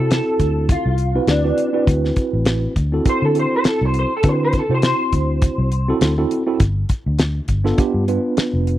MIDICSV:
0, 0, Header, 1, 6, 480
1, 0, Start_track
1, 0, Tempo, 591133
1, 1525, Time_signature, 4, 2, 24, 8
1, 7133, End_track
2, 0, Start_track
2, 0, Title_t, "Clean electric guitar"
2, 0, Program_c, 0, 27
2, 0, Note_on_c, 0, 69, 83
2, 87, Note_off_c, 0, 69, 0
2, 108, Note_on_c, 0, 69, 76
2, 562, Note_off_c, 0, 69, 0
2, 582, Note_on_c, 0, 65, 78
2, 1039, Note_off_c, 0, 65, 0
2, 1058, Note_on_c, 0, 62, 85
2, 1517, Note_off_c, 0, 62, 0
2, 2512, Note_on_c, 0, 72, 99
2, 2638, Note_off_c, 0, 72, 0
2, 2638, Note_on_c, 0, 69, 68
2, 2733, Note_off_c, 0, 69, 0
2, 2756, Note_on_c, 0, 72, 76
2, 2868, Note_off_c, 0, 72, 0
2, 2892, Note_on_c, 0, 72, 84
2, 2980, Note_off_c, 0, 72, 0
2, 2993, Note_on_c, 0, 69, 90
2, 3128, Note_off_c, 0, 69, 0
2, 3128, Note_on_c, 0, 72, 72
2, 3218, Note_off_c, 0, 72, 0
2, 3239, Note_on_c, 0, 72, 78
2, 3350, Note_off_c, 0, 72, 0
2, 3383, Note_on_c, 0, 69, 80
2, 3479, Note_off_c, 0, 69, 0
2, 3479, Note_on_c, 0, 72, 81
2, 3590, Note_off_c, 0, 72, 0
2, 3610, Note_on_c, 0, 72, 86
2, 3699, Note_off_c, 0, 72, 0
2, 3728, Note_on_c, 0, 69, 80
2, 3835, Note_off_c, 0, 69, 0
2, 3853, Note_on_c, 0, 72, 79
2, 3940, Note_off_c, 0, 72, 0
2, 3955, Note_on_c, 0, 72, 91
2, 5347, Note_off_c, 0, 72, 0
2, 7133, End_track
3, 0, Start_track
3, 0, Title_t, "Tine electric piano"
3, 0, Program_c, 1, 4
3, 0, Note_on_c, 1, 60, 75
3, 0, Note_on_c, 1, 64, 73
3, 0, Note_on_c, 1, 66, 70
3, 0, Note_on_c, 1, 69, 86
3, 772, Note_off_c, 1, 60, 0
3, 774, Note_off_c, 1, 64, 0
3, 776, Note_off_c, 1, 66, 0
3, 776, Note_off_c, 1, 69, 0
3, 935, Note_on_c, 1, 60, 79
3, 938, Note_on_c, 1, 64, 69
3, 938, Note_on_c, 1, 66, 74
3, 941, Note_on_c, 1, 71, 81
3, 1134, Note_off_c, 1, 60, 0
3, 1135, Note_off_c, 1, 64, 0
3, 1135, Note_off_c, 1, 66, 0
3, 1137, Note_off_c, 1, 71, 0
3, 1171, Note_on_c, 1, 60, 74
3, 1172, Note_on_c, 1, 64, 67
3, 1176, Note_on_c, 1, 66, 72
3, 1177, Note_on_c, 1, 71, 82
3, 1372, Note_off_c, 1, 60, 0
3, 1373, Note_off_c, 1, 64, 0
3, 1374, Note_off_c, 1, 66, 0
3, 1375, Note_off_c, 1, 71, 0
3, 1404, Note_on_c, 1, 60, 84
3, 1408, Note_on_c, 1, 64, 74
3, 1413, Note_on_c, 1, 66, 77
3, 1413, Note_on_c, 1, 71, 96
3, 2210, Note_off_c, 1, 60, 0
3, 2211, Note_off_c, 1, 64, 0
3, 2214, Note_off_c, 1, 66, 0
3, 2214, Note_off_c, 1, 71, 0
3, 2374, Note_on_c, 1, 60, 73
3, 2379, Note_on_c, 1, 64, 63
3, 2381, Note_on_c, 1, 66, 69
3, 2386, Note_on_c, 1, 69, 87
3, 2467, Note_off_c, 1, 60, 0
3, 2469, Note_off_c, 1, 64, 0
3, 2470, Note_off_c, 1, 66, 0
3, 2472, Note_off_c, 1, 69, 0
3, 2484, Note_on_c, 1, 60, 66
3, 2485, Note_on_c, 1, 64, 62
3, 2489, Note_on_c, 1, 66, 62
3, 2491, Note_on_c, 1, 69, 81
3, 2690, Note_off_c, 1, 60, 0
3, 2690, Note_off_c, 1, 64, 0
3, 2692, Note_off_c, 1, 66, 0
3, 2693, Note_off_c, 1, 69, 0
3, 2717, Note_on_c, 1, 60, 72
3, 2721, Note_on_c, 1, 64, 62
3, 2723, Note_on_c, 1, 66, 56
3, 2728, Note_on_c, 1, 69, 69
3, 3338, Note_off_c, 1, 60, 0
3, 3340, Note_off_c, 1, 64, 0
3, 3341, Note_off_c, 1, 66, 0
3, 3343, Note_off_c, 1, 69, 0
3, 3440, Note_on_c, 1, 64, 71
3, 3442, Note_on_c, 1, 60, 82
3, 3445, Note_on_c, 1, 66, 78
3, 3451, Note_on_c, 1, 71, 80
3, 3751, Note_off_c, 1, 64, 0
3, 3752, Note_off_c, 1, 60, 0
3, 3754, Note_off_c, 1, 66, 0
3, 3757, Note_off_c, 1, 71, 0
3, 3814, Note_on_c, 1, 60, 81
3, 3818, Note_on_c, 1, 64, 68
3, 3818, Note_on_c, 1, 66, 74
3, 3824, Note_on_c, 1, 72, 81
3, 4615, Note_off_c, 1, 60, 0
3, 4616, Note_off_c, 1, 64, 0
3, 4616, Note_off_c, 1, 66, 0
3, 4620, Note_off_c, 1, 72, 0
3, 4778, Note_on_c, 1, 60, 93
3, 4780, Note_on_c, 1, 64, 80
3, 4783, Note_on_c, 1, 66, 87
3, 4789, Note_on_c, 1, 69, 103
3, 4975, Note_off_c, 1, 60, 0
3, 4976, Note_off_c, 1, 64, 0
3, 4978, Note_off_c, 1, 66, 0
3, 4981, Note_off_c, 1, 69, 0
3, 5015, Note_on_c, 1, 60, 90
3, 5017, Note_on_c, 1, 64, 78
3, 5022, Note_on_c, 1, 66, 73
3, 5023, Note_on_c, 1, 69, 92
3, 5214, Note_off_c, 1, 60, 0
3, 5215, Note_off_c, 1, 64, 0
3, 5217, Note_off_c, 1, 66, 0
3, 5218, Note_off_c, 1, 69, 0
3, 5251, Note_on_c, 1, 60, 96
3, 5253, Note_on_c, 1, 64, 85
3, 5254, Note_on_c, 1, 66, 78
3, 5259, Note_on_c, 1, 69, 94
3, 5362, Note_off_c, 1, 60, 0
3, 5363, Note_off_c, 1, 64, 0
3, 5364, Note_off_c, 1, 66, 0
3, 5366, Note_off_c, 1, 69, 0
3, 6207, Note_on_c, 1, 59, 92
3, 6210, Note_on_c, 1, 62, 76
3, 6211, Note_on_c, 1, 65, 86
3, 6216, Note_on_c, 1, 69, 103
3, 6303, Note_off_c, 1, 59, 0
3, 6304, Note_off_c, 1, 62, 0
3, 6305, Note_off_c, 1, 65, 0
3, 6307, Note_off_c, 1, 69, 0
3, 6314, Note_on_c, 1, 59, 84
3, 6315, Note_on_c, 1, 62, 74
3, 6319, Note_on_c, 1, 65, 70
3, 6323, Note_on_c, 1, 67, 95
3, 6525, Note_off_c, 1, 59, 0
3, 6525, Note_off_c, 1, 62, 0
3, 6527, Note_off_c, 1, 65, 0
3, 6529, Note_off_c, 1, 67, 0
3, 6560, Note_on_c, 1, 59, 75
3, 6565, Note_on_c, 1, 62, 73
3, 6566, Note_on_c, 1, 65, 73
3, 6566, Note_on_c, 1, 71, 80
3, 7133, Note_off_c, 1, 59, 0
3, 7133, Note_off_c, 1, 62, 0
3, 7133, Note_off_c, 1, 65, 0
3, 7133, Note_off_c, 1, 71, 0
3, 7133, End_track
4, 0, Start_track
4, 0, Title_t, "Fingered electric bass"
4, 0, Program_c, 2, 33
4, 0, Note_on_c, 2, 48, 88
4, 158, Note_off_c, 2, 48, 0
4, 321, Note_on_c, 2, 38, 81
4, 606, Note_off_c, 2, 38, 0
4, 695, Note_on_c, 2, 36, 82
4, 962, Note_off_c, 2, 36, 0
4, 1035, Note_on_c, 2, 38, 102
4, 1222, Note_off_c, 2, 38, 0
4, 1521, Note_on_c, 2, 38, 100
4, 1706, Note_off_c, 2, 38, 0
4, 1894, Note_on_c, 2, 33, 83
4, 2161, Note_off_c, 2, 33, 0
4, 2239, Note_on_c, 2, 38, 84
4, 2425, Note_off_c, 2, 38, 0
4, 2615, Note_on_c, 2, 50, 83
4, 2799, Note_off_c, 2, 50, 0
4, 3096, Note_on_c, 2, 36, 79
4, 3280, Note_off_c, 2, 36, 0
4, 3441, Note_on_c, 2, 50, 90
4, 3726, Note_off_c, 2, 50, 0
4, 3811, Note_on_c, 2, 48, 80
4, 3996, Note_off_c, 2, 48, 0
4, 4161, Note_on_c, 2, 38, 72
4, 4446, Note_off_c, 2, 38, 0
4, 4532, Note_on_c, 2, 36, 88
4, 4800, Note_off_c, 2, 36, 0
4, 4881, Note_on_c, 2, 38, 95
4, 5066, Note_off_c, 2, 38, 0
4, 5361, Note_on_c, 2, 31, 103
4, 5546, Note_off_c, 2, 31, 0
4, 5736, Note_on_c, 2, 38, 83
4, 6002, Note_off_c, 2, 38, 0
4, 6076, Note_on_c, 2, 31, 85
4, 6263, Note_off_c, 2, 31, 0
4, 6449, Note_on_c, 2, 43, 81
4, 6635, Note_off_c, 2, 43, 0
4, 6929, Note_on_c, 2, 29, 81
4, 7115, Note_off_c, 2, 29, 0
4, 7133, End_track
5, 0, Start_track
5, 0, Title_t, "Muted fingered electric bass strokes"
5, 2968, Note_on_c, 9, 29, 39
5, 3050, Note_off_c, 9, 29, 0
5, 6799, Note_on_c, 9, 29, 39
5, 6881, Note_off_c, 9, 29, 0
5, 7133, End_track
6, 0, Start_track
6, 0, Title_t, "Drums"
6, 87, Note_on_c, 9, 42, 83
6, 94, Note_on_c, 9, 38, 108
6, 168, Note_off_c, 9, 42, 0
6, 175, Note_off_c, 9, 38, 0
6, 321, Note_on_c, 9, 42, 58
6, 322, Note_on_c, 9, 36, 68
6, 402, Note_off_c, 9, 42, 0
6, 403, Note_off_c, 9, 36, 0
6, 560, Note_on_c, 9, 42, 84
6, 561, Note_on_c, 9, 36, 103
6, 641, Note_off_c, 9, 42, 0
6, 642, Note_off_c, 9, 36, 0
6, 795, Note_on_c, 9, 42, 60
6, 876, Note_off_c, 9, 42, 0
6, 1035, Note_on_c, 9, 42, 75
6, 1042, Note_on_c, 9, 38, 94
6, 1116, Note_off_c, 9, 42, 0
6, 1124, Note_off_c, 9, 38, 0
6, 1281, Note_on_c, 9, 42, 66
6, 1362, Note_off_c, 9, 42, 0
6, 1522, Note_on_c, 9, 36, 105
6, 1526, Note_on_c, 9, 42, 76
6, 1603, Note_off_c, 9, 36, 0
6, 1607, Note_off_c, 9, 42, 0
6, 1662, Note_on_c, 9, 38, 32
6, 1744, Note_off_c, 9, 38, 0
6, 1755, Note_on_c, 9, 42, 57
6, 1759, Note_on_c, 9, 36, 76
6, 1836, Note_off_c, 9, 42, 0
6, 1840, Note_off_c, 9, 36, 0
6, 1994, Note_on_c, 9, 42, 72
6, 2001, Note_on_c, 9, 38, 107
6, 2075, Note_off_c, 9, 42, 0
6, 2082, Note_off_c, 9, 38, 0
6, 2242, Note_on_c, 9, 36, 76
6, 2242, Note_on_c, 9, 42, 52
6, 2323, Note_off_c, 9, 36, 0
6, 2323, Note_off_c, 9, 42, 0
6, 2481, Note_on_c, 9, 42, 75
6, 2482, Note_on_c, 9, 36, 96
6, 2562, Note_off_c, 9, 42, 0
6, 2563, Note_off_c, 9, 36, 0
6, 2721, Note_on_c, 9, 42, 62
6, 2802, Note_off_c, 9, 42, 0
6, 2957, Note_on_c, 9, 42, 74
6, 2965, Note_on_c, 9, 38, 101
6, 3039, Note_off_c, 9, 42, 0
6, 3046, Note_off_c, 9, 38, 0
6, 3198, Note_on_c, 9, 42, 62
6, 3279, Note_off_c, 9, 42, 0
6, 3435, Note_on_c, 9, 42, 79
6, 3441, Note_on_c, 9, 36, 102
6, 3516, Note_off_c, 9, 42, 0
6, 3522, Note_off_c, 9, 36, 0
6, 3676, Note_on_c, 9, 42, 61
6, 3681, Note_on_c, 9, 36, 74
6, 3757, Note_off_c, 9, 42, 0
6, 3762, Note_off_c, 9, 36, 0
6, 3916, Note_on_c, 9, 42, 76
6, 3924, Note_on_c, 9, 38, 98
6, 3998, Note_off_c, 9, 42, 0
6, 4005, Note_off_c, 9, 38, 0
6, 4161, Note_on_c, 9, 42, 61
6, 4163, Note_on_c, 9, 36, 66
6, 4243, Note_off_c, 9, 42, 0
6, 4244, Note_off_c, 9, 36, 0
6, 4398, Note_on_c, 9, 42, 80
6, 4402, Note_on_c, 9, 36, 99
6, 4480, Note_off_c, 9, 42, 0
6, 4484, Note_off_c, 9, 36, 0
6, 4642, Note_on_c, 9, 42, 61
6, 4723, Note_off_c, 9, 42, 0
6, 4881, Note_on_c, 9, 42, 81
6, 4888, Note_on_c, 9, 38, 95
6, 4962, Note_off_c, 9, 42, 0
6, 4970, Note_off_c, 9, 38, 0
6, 5124, Note_on_c, 9, 42, 64
6, 5205, Note_off_c, 9, 42, 0
6, 5358, Note_on_c, 9, 42, 87
6, 5361, Note_on_c, 9, 36, 106
6, 5439, Note_off_c, 9, 42, 0
6, 5442, Note_off_c, 9, 36, 0
6, 5596, Note_on_c, 9, 42, 68
6, 5600, Note_on_c, 9, 36, 82
6, 5677, Note_off_c, 9, 42, 0
6, 5681, Note_off_c, 9, 36, 0
6, 5835, Note_on_c, 9, 42, 88
6, 5843, Note_on_c, 9, 38, 105
6, 5917, Note_off_c, 9, 42, 0
6, 5924, Note_off_c, 9, 38, 0
6, 6073, Note_on_c, 9, 42, 60
6, 6079, Note_on_c, 9, 36, 69
6, 6155, Note_off_c, 9, 42, 0
6, 6160, Note_off_c, 9, 36, 0
6, 6221, Note_on_c, 9, 38, 34
6, 6302, Note_off_c, 9, 38, 0
6, 6317, Note_on_c, 9, 42, 81
6, 6320, Note_on_c, 9, 36, 106
6, 6398, Note_off_c, 9, 42, 0
6, 6402, Note_off_c, 9, 36, 0
6, 6561, Note_on_c, 9, 42, 60
6, 6643, Note_off_c, 9, 42, 0
6, 6797, Note_on_c, 9, 42, 69
6, 6804, Note_on_c, 9, 38, 93
6, 6878, Note_off_c, 9, 42, 0
6, 6886, Note_off_c, 9, 38, 0
6, 7042, Note_on_c, 9, 42, 56
6, 7123, Note_off_c, 9, 42, 0
6, 7133, End_track
0, 0, End_of_file